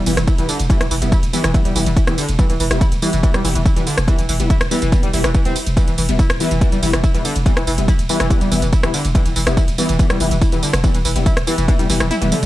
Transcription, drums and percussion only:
0.06 open hi-hat, ride, tambourine
0.17 cross-stick, closed hi-hat, ride, tambourine
0.27 kick, closed hi-hat, ride, tambourine
0.38 closed hi-hat, ride, tambourine
0.49 open hi-hat, ride, tambourine
0.59 closed hi-hat, ride, tambourine
0.70 kick, closed hi-hat, ride, tambourine
0.81 cross-stick, closed hi-hat, ride, tambourine
0.91 open hi-hat, ride, tambourine
1.02 closed hi-hat, ride, tambourine
1.12 kick, closed hi-hat, ride, tambourine
1.23 closed hi-hat, ride, tambourine
1.33 open hi-hat, ride, tambourine
1.44 cross-stick, closed hi-hat, ride, tambourine
1.54 kick, closed hi-hat, ride, tambourine
1.65 closed hi-hat, ride, tambourine
1.76 open hi-hat, ride, tambourine
1.86 closed hi-hat, ride, tambourine
1.97 kick, closed hi-hat, ride, tambourine
2.07 cross-stick, closed hi-hat, ride, tambourine
2.18 open hi-hat, ride, tambourine
2.29 closed hi-hat, ride, tambourine
2.39 kick, closed hi-hat, ride, tambourine
2.50 closed hi-hat, ride, tambourine
2.60 open hi-hat, ride, tambourine
2.71 cross-stick, closed hi-hat, ride, tambourine
2.81 kick, closed hi-hat, ride, tambourine
2.92 closed hi-hat, ride, tambourine
3.02 open hi-hat, ride, tambourine
3.13 closed hi-hat, ride, tambourine
3.23 kick, closed hi-hat, ride, tambourine
3.34 cross-stick, closed hi-hat, ride, tambourine
3.45 open hi-hat, ride, tambourine
3.55 closed hi-hat, ride, tambourine
3.66 kick, closed hi-hat, ride, tambourine
3.76 closed hi-hat, ride, tambourine
3.87 open hi-hat, ride, tambourine
3.98 cross-stick, closed hi-hat, ride, tambourine
4.08 kick, closed hi-hat, ride, tambourine
4.19 closed hi-hat, ride, tambourine
4.29 open hi-hat, ride, tambourine
4.40 closed hi-hat, ride, tambourine
4.50 kick, closed hi-hat, ride, tambourine
4.61 cross-stick, closed hi-hat, ride, tambourine
4.71 open hi-hat, ride, tambourine
4.82 closed hi-hat, ride, tambourine
4.92 kick, closed hi-hat, ride, tambourine
5.03 closed hi-hat, ride, tambourine
5.13 open hi-hat, ride, tambourine
5.24 cross-stick, closed hi-hat, ride, tambourine
5.34 kick, closed hi-hat, ride, tambourine
5.45 closed hi-hat, ride, tambourine
5.56 open hi-hat, ride, tambourine
5.66 closed hi-hat, ride, tambourine
5.77 kick, closed hi-hat, ride, tambourine
5.88 closed hi-hat, ride, tambourine
5.98 open hi-hat, ride, tambourine
6.09 closed hi-hat, ride, tambourine
6.19 kick, closed hi-hat, ride, tambourine
6.30 cross-stick, closed hi-hat, ride, tambourine
6.40 open hi-hat, ride, tambourine
6.51 closed hi-hat, ride, tambourine
6.61 kick, closed hi-hat, ride, tambourine
6.72 closed hi-hat, ride, tambourine
6.83 open hi-hat, ride, tambourine
6.93 cross-stick, closed hi-hat, ride, tambourine
7.04 kick, closed hi-hat, ride, tambourine
7.14 closed hi-hat, ride, tambourine
7.25 open hi-hat, ride, tambourine
7.36 closed hi-hat, ride, tambourine
7.46 kick, closed hi-hat, ride, tambourine
7.57 cross-stick, closed hi-hat, ride, tambourine
7.67 open hi-hat, ride, tambourine
7.78 closed hi-hat, ride, tambourine
7.88 kick, closed hi-hat, ride, tambourine
7.99 closed hi-hat, ride, tambourine
8.09 open hi-hat, ride, tambourine
8.20 cross-stick, closed hi-hat, ride, tambourine
8.30 kick, closed hi-hat, ride, tambourine
8.41 closed hi-hat, ride, tambourine
8.52 open hi-hat, ride, tambourine
8.62 closed hi-hat, ride, tambourine
8.73 kick, closed hi-hat, ride, tambourine
8.83 cross-stick, closed hi-hat, ride, tambourine
8.94 open hi-hat, ride, tambourine
9.05 closed hi-hat, ride, tambourine
9.15 kick, closed hi-hat, ride, tambourine
9.26 closed hi-hat, ride, tambourine
9.36 open hi-hat, ride, tambourine
9.47 cross-stick, closed hi-hat, ride, tambourine
9.57 kick, closed hi-hat, ride, tambourine
9.68 closed hi-hat, ride, tambourine
9.78 open hi-hat, ride, tambourine
9.89 closed hi-hat, ride, tambourine
9.99 kick, closed hi-hat, ride, tambourine
10.10 cross-stick, closed hi-hat, ride, tambourine
10.20 open hi-hat, ride, tambourine
10.31 closed hi-hat, ride, tambourine
10.42 kick, closed hi-hat, ride, tambourine
10.52 closed hi-hat, ride, tambourine
10.63 open hi-hat, ride, tambourine
10.73 cross-stick, closed hi-hat, ride, tambourine
10.84 kick, closed hi-hat, ride, tambourine
10.95 closed hi-hat, ride, tambourine
11.05 open hi-hat, ride, tambourine
11.16 closed hi-hat, ride, tambourine
11.26 kick, closed hi-hat, ride, tambourine
11.37 cross-stick, closed hi-hat, ride, tambourine
11.47 open hi-hat, ride, tambourine
11.58 closed hi-hat, ride, tambourine
11.68 kick, closed hi-hat, high tom, ride, tambourine
11.79 closed hi-hat, high tom, ride, tambourine
11.90 open hi-hat, ride, tambourine
12.00 cross-stick, closed hi-hat, mid tom, ride
12.11 closed hi-hat, mid tom, ride, tambourine
12.22 closed hi-hat, mid tom, ride, tambourine
12.32 mid tom, open hi-hat, ride, tambourine
12.43 closed hi-hat, mid tom, ride, tambourine

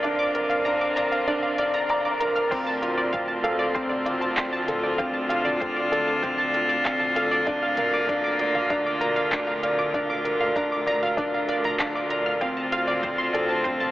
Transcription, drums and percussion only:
0.04 closed hi-hat
0.35 closed hi-hat
0.51 closed hi-hat
0.66 closed hi-hat
0.97 closed hi-hat
1.12 closed hi-hat
1.28 closed hi-hat
1.58 closed hi-hat
1.74 closed hi-hat
1.89 closed hi-hat
2.21 closed hi-hat
2.36 closed hi-hat
2.51 kick, closed hi-hat, crash
2.83 closed hi-hat
3.13 kick, closed hi-hat, mid tom
3.44 closed hi-hat
3.75 kick, closed hi-hat
3.91 mid tom
4.06 closed hi-hat
4.22 closed hi-hat
4.37 kick, clap, closed hi-hat
4.68 closed hi-hat, mid tom
4.99 kick, closed hi-hat
5.30 closed hi-hat
5.46 mid tom
5.61 kick, closed hi-hat
5.93 closed hi-hat
6.23 kick, closed hi-hat, mid tom
6.54 closed hi-hat
6.70 closed hi-hat
6.85 kick, clap, closed hi-hat
7.00 mid tom
7.16 closed hi-hat
7.47 kick, closed hi-hat
7.77 closed hi-hat, mid tom
8.09 kick, closed hi-hat
8.39 closed hi-hat
8.55 mid tom
8.70 kick, closed hi-hat
9.01 closed hi-hat
9.17 closed hi-hat
9.32 kick, clap, closed hi-hat, mid tom
9.63 closed hi-hat
9.94 kick, closed hi-hat
10.10 mid tom
10.25 closed hi-hat
10.56 kick, closed hi-hat
10.87 closed hi-hat, mid tom
11.18 kick, closed hi-hat
11.49 closed hi-hat
11.64 closed hi-hat, mid tom
11.79 kick, clap, closed hi-hat
12.10 closed hi-hat
12.41 kick, closed hi-hat
12.72 closed hi-hat
13.03 kick, closed hi-hat, mid tom
13.35 closed hi-hat
13.65 kick, closed hi-hat
13.81 mid tom

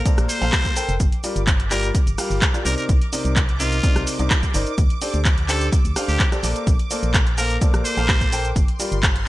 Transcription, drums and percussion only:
0.06 kick, closed hi-hat, shaker
0.18 cross-stick, closed hi-hat, shaker
0.29 open hi-hat, shaker
0.42 open hi-hat, shaker
0.53 kick, cross-stick, clap, closed hi-hat, shaker
0.65 kick, closed hi-hat, shaker
0.76 open hi-hat, shaker
0.89 closed hi-hat, shaker
1.00 kick, closed hi-hat, shaker
1.12 closed hi-hat
1.24 open hi-hat, shaker
1.36 closed hi-hat, shaker
1.47 kick, clap, closed hi-hat, shaker
1.60 closed hi-hat
1.71 clap, open hi-hat, shaker
1.83 closed hi-hat, shaker
1.95 kick, closed hi-hat, shaker
2.07 closed hi-hat, shaker
2.18 cross-stick, open hi-hat, shaker
2.31 open hi-hat, shaker
2.42 kick, clap, closed hi-hat, shaker
2.54 cross-stick, closed hi-hat, shaker
2.66 open hi-hat, shaker
2.78 closed hi-hat, shaker
2.89 kick, closed hi-hat, shaker
3.01 closed hi-hat
3.13 open hi-hat, shaker
3.25 closed hi-hat, shaker
3.36 kick, clap, closed hi-hat, shaker
3.49 closed hi-hat
3.60 open hi-hat, shaker
3.72 closed hi-hat, shaker
3.83 kick, closed hi-hat, shaker
3.96 cross-stick, closed hi-hat, shaker
4.07 open hi-hat, shaker
4.19 closed hi-hat, shaker
4.30 kick, cross-stick, clap, closed hi-hat, shaker
4.43 kick, closed hi-hat, shaker
4.54 open hi-hat, shaker
4.67 closed hi-hat, shaker
4.78 kick, closed hi-hat, shaker
4.90 closed hi-hat
5.02 open hi-hat, shaker
5.14 closed hi-hat, shaker
5.25 kick, clap, closed hi-hat, shaker
5.38 closed hi-hat
5.49 clap, open hi-hat, shaker
5.61 closed hi-hat, shaker
5.72 kick, closed hi-hat, shaker
5.85 closed hi-hat, shaker
5.96 cross-stick, open hi-hat, shaker
6.09 open hi-hat, shaker
6.20 kick, clap, closed hi-hat, shaker
6.32 cross-stick, closed hi-hat, shaker
6.44 open hi-hat, shaker
6.56 closed hi-hat, shaker
6.67 kick, closed hi-hat, shaker
6.79 closed hi-hat
6.91 open hi-hat, shaker
7.03 closed hi-hat, shaker
7.14 kick, clap, closed hi-hat, shaker
7.27 closed hi-hat
7.38 open hi-hat, shaker
7.50 shaker
7.61 kick, closed hi-hat, shaker
7.74 cross-stick, closed hi-hat, shaker
7.85 open hi-hat, shaker
7.97 closed hi-hat, shaker
8.09 kick, cross-stick, clap, closed hi-hat, shaker
8.21 kick, closed hi-hat, shaker
8.32 open hi-hat, shaker
8.45 closed hi-hat, shaker
8.56 kick, closed hi-hat, shaker
8.68 closed hi-hat
8.80 open hi-hat, shaker
8.92 closed hi-hat, shaker
9.03 kick, clap, closed hi-hat, shaker
9.16 closed hi-hat

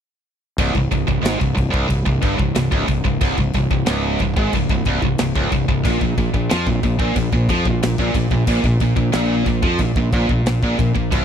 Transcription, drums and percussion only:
0.58 kick, crash
0.75 kick
0.92 kick, crash
1.08 kick
1.25 snare, crash
1.41 kick
1.57 kick, crash
1.74 kick
1.90 kick, crash
2.06 kick
2.22 kick, crash
2.39 kick
2.55 snare, crash
2.72 kick
2.88 kick, crash
3.05 kick
3.21 kick, crash
3.38 kick
3.53 kick, crash
3.71 kick
3.86 snare, crash
4.19 kick, crash
4.37 kick
4.53 kick, crash
4.69 kick
4.85 kick, crash
5.02 kick
5.18 snare, crash
5.35 kick
5.52 kick, crash
5.69 kick
5.85 kick, crash
6.01 kick
6.18 kick, crash
6.34 kick
6.50 snare, crash
6.67 kick
6.83 kick, crash
6.99 kick
7.16 kick, crash
7.32 kick
7.49 kick, crash
7.65 kick
7.83 snare, crash
7.98 kick
8.14 kick, crash
8.31 kick
8.47 kick, crash
8.64 kick
8.80 kick, crash
8.96 kick
9.13 snare, crash
9.46 kick, crash
9.63 kick
9.79 kick, crash
9.96 kick
10.13 kick, crash
10.29 kick
10.46 snare, crash
10.63 kick
10.79 kick, crash
10.96 kick
11.12 kick, crash

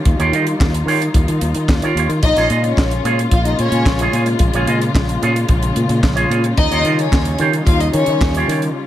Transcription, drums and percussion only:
0.05 kick, closed hi-hat
0.20 closed hi-hat
0.33 closed hi-hat
0.47 closed hi-hat
0.60 kick, snare, clap
0.74 closed hi-hat
0.88 open hi-hat
1.02 closed hi-hat
1.14 kick, closed hi-hat
1.28 closed hi-hat
1.41 closed hi-hat
1.55 closed hi-hat
1.68 kick, snare, clap
1.82 closed hi-hat
1.97 closed hi-hat
2.10 closed hi-hat
2.23 kick, closed hi-hat
2.36 snare, closed hi-hat
2.50 closed hi-hat
2.64 closed hi-hat
2.77 kick, snare, clap
2.91 closed hi-hat
3.05 closed hi-hat
3.19 closed hi-hat
3.31 kick, closed hi-hat
3.45 closed hi-hat
3.59 closed hi-hat
3.72 closed hi-hat
3.86 kick, snare, clap
3.99 closed hi-hat
4.13 closed hi-hat
4.26 closed hi-hat
4.39 kick, closed hi-hat
4.54 closed hi-hat
4.67 closed hi-hat
4.82 closed hi-hat
4.95 kick, snare, clap
5.09 closed hi-hat
5.23 closed hi-hat
5.36 closed hi-hat
5.49 kick, closed hi-hat
5.63 closed hi-hat
5.76 closed hi-hat
5.89 closed hi-hat
6.03 kick, snare, clap
6.17 closed hi-hat
6.32 closed hi-hat
6.44 closed hi-hat
6.58 kick, closed hi-hat
6.72 closed hi-hat
6.85 closed hi-hat
6.99 closed hi-hat
7.12 kick, snare, clap
7.25 closed hi-hat
7.39 closed hi-hat
7.53 closed hi-hat
7.67 kick, closed hi-hat
7.80 closed hi-hat
7.93 closed hi-hat
8.06 closed hi-hat
8.21 kick, snare, clap
8.35 closed hi-hat
8.49 closed hi-hat
8.62 closed hi-hat

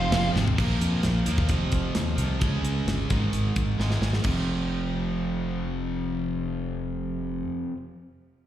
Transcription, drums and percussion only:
0.12 snare, crash
0.36 snare
0.48 floor tom
0.58 kick, crash
0.81 closed hi-hat
1.03 snare, closed hi-hat
1.26 closed hi-hat
1.38 kick
1.49 kick, closed hi-hat
1.72 kick, closed hi-hat
1.95 snare, closed hi-hat
2.18 closed hi-hat
2.41 kick, closed hi-hat
2.65 closed hi-hat
2.88 snare, closed hi-hat
3.10 kick, closed hi-hat
3.33 closed hi-hat
3.56 kick, closed hi-hat
3.80 snare
3.91 snare
4.02 snare
4.13 snare
4.24 kick, crash

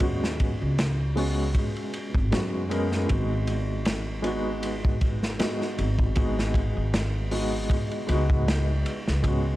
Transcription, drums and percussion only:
0.00 kick, ride
0.24 snare
0.40 kick, ride
0.78 snare, ride
1.17 open hi-hat
1.55 kick, ride
1.76 ride
1.93 ride
2.14 kick
2.32 snare, ride
2.71 ride
2.92 snare
3.09 kick, ride
3.47 ride
3.85 snare, ride
4.24 ride
4.63 ride
4.85 kick
5.01 kick, ride
5.23 snare
5.39 snare, ride
5.61 snare
5.78 ride
5.99 kick
6.15 kick, ride
6.39 snare
6.54 kick, ride
6.94 snare, ride
7.31 open hi-hat
7.70 kick, ride
7.91 ride
8.09 ride
8.30 kick
8.48 snare, ride
8.86 ride
9.08 snare
9.24 kick, ride

